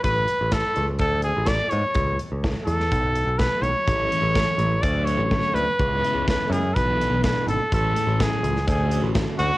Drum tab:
HH |x-x-x-x-x-x-x-x-|x-x-x-x-x-x-x-x-|x-x-x-x-x-x-x-x-|x-x-x-x-x-x-x-x-|
SD |----o-------o---|----o--o----o---|----o-------o---|----o-------o---|
BD |o---o---o---o---|o---o---o---o---|o---o---o---o---|o---o---o---o---|

HH |x-x-x-x-x-x-x-x-|
SD |----o--o----o---|
BD |o---o---o---o---|